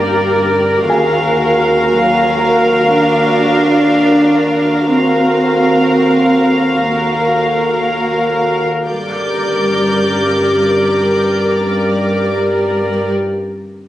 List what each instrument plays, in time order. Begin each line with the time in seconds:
Already playing: synth drone G1, double bass section G2, cello section A#3, viola section G4 A#4, violin section D5
0.89 double bass section D#2, synth drone D#2, viola section F#4 A#4, grand piano G#4 G#5, violin section F5
1.89 cello section F#3
2.39 grand piano A#4 A#5
2.89 cello section D4
4.87 synth drone D#2, double bass section D#2, cello section C4, viola section F#4 A#4, violin section F5
6.87 cello section A#3
8.87 synth drone G1, double bass section G2, cello section G3, viola section G4 A#4, violin section D5 D6 G6